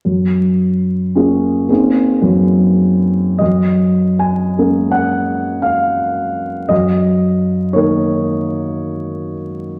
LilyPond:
<<
  \new Staff \with { instrumentName = "Grand piano" } { \time 3/4 \key ges \lydian \tempo 4 = 56 r2. | \tuplet 3/2 { ees''4 aes''8~ aes''8 ges''4 } f''4 | ees''4 des''4. r8 | }
  \new Staff \with { instrumentName = "Grand piano" } { \time 3/4 \key ges \lydian ges,4 <bes des' f' aes'>8 <bes c' ees' aes'>8 ges,4 | ges,4 <aes bes des' bes'>2 | ges,4 <ees bes ees' bes'>2 | }
>>